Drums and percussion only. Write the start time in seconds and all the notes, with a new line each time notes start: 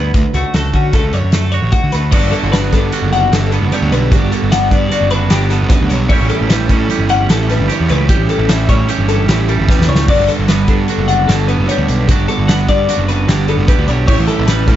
0.14 kick, closed hi-hat
0.34 closed hi-hat
0.54 snare, closed hi-hat
0.73 kick, closed hi-hat
0.93 kick, snare, closed hi-hat
1.13 closed hi-hat
1.32 snare, closed hi-hat
1.52 closed hi-hat
1.72 kick, closed hi-hat
1.92 snare, closed hi-hat
2.12 kick, crash
2.33 closed hi-hat
2.53 snare, closed hi-hat
2.73 kick, snare, closed hi-hat
2.92 closed hi-hat
3.13 closed hi-hat
3.33 snare, closed hi-hat
3.52 closed hi-hat
3.72 closed hi-hat
3.92 closed hi-hat
4.12 kick, closed hi-hat
4.32 closed hi-hat
4.52 snare, closed hi-hat
4.71 kick, closed hi-hat
4.92 closed hi-hat
5.11 closed hi-hat
5.30 snare, closed hi-hat
5.50 snare, closed hi-hat
5.70 kick, snare, closed hi-hat
5.90 closed hi-hat
6.10 kick, crash
6.29 closed hi-hat
6.50 snare, closed hi-hat
6.69 kick, closed hi-hat
6.90 closed hi-hat
7.09 closed hi-hat
7.29 snare, closed hi-hat
7.50 snare, closed hi-hat
7.69 closed hi-hat
7.89 closed hi-hat
8.09 kick, closed hi-hat
8.29 closed hi-hat
8.49 snare, closed hi-hat
8.69 kick, closed hi-hat
8.89 closed hi-hat
9.09 closed hi-hat
9.28 snare, closed hi-hat
9.48 closed hi-hat
9.69 kick, snare
9.82 snare
9.95 snare
10.08 kick, crash
10.28 snare, closed hi-hat
10.48 snare, closed hi-hat
10.68 kick, closed hi-hat
10.88 closed hi-hat
11.08 closed hi-hat
11.29 snare, closed hi-hat
11.48 closed hi-hat
11.69 closed hi-hat
11.88 closed hi-hat
12.09 kick, closed hi-hat
12.28 closed hi-hat
12.49 snare, closed hi-hat
12.69 kick, closed hi-hat
12.89 snare, closed hi-hat
13.09 closed hi-hat
13.28 snare, closed hi-hat
13.48 closed hi-hat
13.68 kick, closed hi-hat
13.88 closed hi-hat
14.08 kick, crash
14.28 closed hi-hat
14.48 snare, closed hi-hat
14.68 kick, closed hi-hat